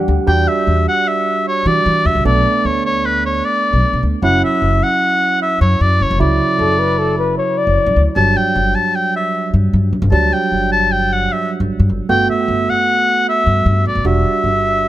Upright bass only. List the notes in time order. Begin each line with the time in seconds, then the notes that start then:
0.08 D2
0.27 E2
0.67 E2
1.66 E3
1.86 E3
2.05 E2
2.15 C#2
2.25 B1
2.65 D2
3.73 B1
3.93 B2
4.03 D2
4.22 F#1
4.62 F#1
5.61 F#2
5.81 F#2
6.00 F#1
6.11 F#1
6.20 C#2
6.59 F#1
7.67 F#1
7.86 F#2
7.96 D2
8.16 G1
8.55 G1
9.54 G2
9.73 G2
9.93 G1
10.02 G1
10.12 D2
10.52 G1
11.60 G1
11.80 G2
11.89 G1
12.09 G1
12.48 G1
13.46 G2
13.66 G2
13.86 G1
13.95 G1
14.05 E1
14.44 G1